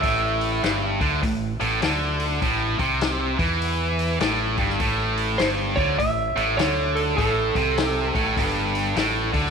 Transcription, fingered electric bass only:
0.04 0.59 A1 medium
0.64 0.98 G1 medium
1.01 1.21 D2 medium
1.23 1.58 A1 medium
1.61 1.81 A1 medium
1.82 2.38 D2 medium
2.42 2.77 A1 loud
2.80 3.35 C2 medium
3.39 4.17 E2 medium
4.20 4.55 A1 medium
4.58 4.79 G1 medium
4.80 5.36 A1 medium
5.40 5.74 G1 medium
5.77 5.98 D2 medium
5.99 6.34 A1 medium
6.36 6.57 A1 medium
6.58 7.14 D2 medium
7.18 7.53 A1 medium
7.56 8.11 C2 medium
8.15 8.36 A1 medium
8.37 8.92 G1 medium
8.96 9.31 A1 medium
9.34 9.50 D2 medium

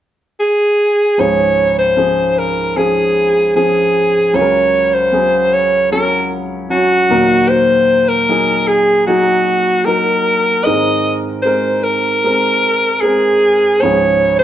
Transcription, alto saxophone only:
0.40 1.22 G#4 medium
1.21 1.78 C#5 medium
1.79 2.40 C5 medium
2.39 2.79 A#4 medium
2.77 3.56 G#4 medium
3.56 4.37 G#4 medium
4.36 4.95 C#5 medium
4.94 5.55 C5 medium
5.54 5.92 C#5 medium
5.92 6.41 A#4 medium
6.71 7.51 F#4 medium
7.49 8.10 C5 medium
8.09 8.70 A#4 medium
8.68 9.06 G#4 medium
9.07 9.87 F#4 medium
9.85 10.66 A#4 medium
10.64 11.17 D#5 medium
11.43 11.85 C5 medium
11.84 13.03 A#4 medium
13.01 13.83 G#4 medium
13.81 14.39 C#5 medium
14.39 14.44 C5 medium

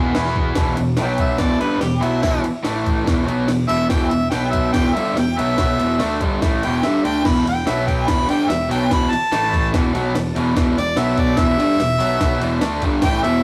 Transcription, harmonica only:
1.00 1.19 G5 medium
1.20 1.41 E5 medium
1.39 1.60 D5 medium
1.60 1.81 B4 medium
1.82 2.04 G4 medium
2.03 2.22 E4 medium
2.22 2.43 E4 loud
3.68 3.89 E5 loud
3.90 4.11 G5 loud
4.09 4.29 E5 loud
4.30 4.50 G5 medium
4.51 4.72 E5 medium
4.72 4.96 G5 loud
4.94 5.15 E5 loud
5.19 5.40 G5 medium
5.38 6.18 E5 loud
6.63 6.87 G5 loud
6.86 7.04 E5 medium
7.05 7.28 G5 loud
7.27 7.46 B5 loud
7.49 7.70 G5 loud
7.68 7.86 E5 medium
7.87 8.11 G5 loud
8.09 8.28 B5 loud
8.30 8.51 G5 loud
8.49 8.69 E5 loud
8.72 8.90 G5 loud
8.93 9.13 B5 loud
9.11 9.71 A5 loud
10.78 11.00 D5 loud
10.98 11.21 E5 medium
11.20 11.40 D5 loud
11.39 12.58 E5 loud
13.04 13.23 G5 loud
13.23 13.43 E5 loud

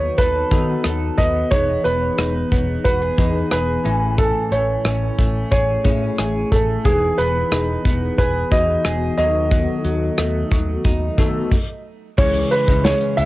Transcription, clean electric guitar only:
0.00 1.52 F#3 medium
0.00 1.18 B3 medium
0.00 0.51 D#4 medium
0.18 0.84 A4 medium
0.52 2.18 D#4 medium
0.85 1.58 A4 medium
1.19 1.52 B3 medium
1.52 1.84 B3 medium
1.85 2.51 B3 medium
2.19 3.18 D#4 medium
2.52 3.92 B3 medium
2.85 3.02 F#4 medium
3.02 3.50 G#4 medium
3.19 3.92 D#4 medium
3.52 4.55 G#4 medium
3.85 4.18 E3 medium
4.18 6.85 E3 medium
4.52 5.17 A3 medium
4.85 5.84 C#4 medium
5.18 6.51 A3 medium
5.52 6.18 G#4 medium
5.85 6.92 C#4 medium
6.19 8.18 G#4 medium
6.52 6.92 A3 medium
6.85 9.18 E3 medium
7.19 7.85 B3 medium
7.52 8.52 D#4 medium
7.85 10.18 B3 medium
8.19 8.84 G#4 medium
8.52 10.21 D#4 medium
8.85 9.25 G#4 medium
9.18 9.50 F#3 medium
9.51 9.84 F#3 medium
9.85 10.50 F#3 medium
10.18 11.17 A3 medium
10.51 11.58 F#3 medium
10.85 11.58 D#4 medium
11.19 11.58 A3 medium
12.19 13.25 E3 medium
12.52 13.18 G#3 medium
12.86 13.25 C#4 medium
13.19 13.25 G#3 medium

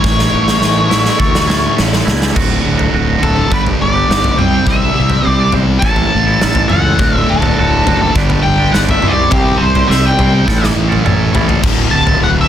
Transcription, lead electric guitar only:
0.00 1.75 C#5 medium
3.23 3.53 A4 medium
3.54 3.61 B4 medium
3.82 4.41 D5 medium
4.38 4.68 G5 loud
4.68 5.28 E5 medium
5.28 5.51 D5 medium
5.79 6.71 A5 loud
6.69 7.16 F#5 medium
7.16 7.30 E5 medium
7.30 8.12 A4 medium
8.43 8.71 G5 medium
8.72 8.78 F#5 medium
8.91 9.12 E5 medium
9.08 9.30 D5 medium
9.31 9.61 G4 medium
9.57 9.89 C5 medium
9.88 10.06 E5 medium
10.06 10.65 G5 medium
11.91 12.19 A5 medium
12.23 12.29 F#5 medium
12.41 12.48 E5 medium

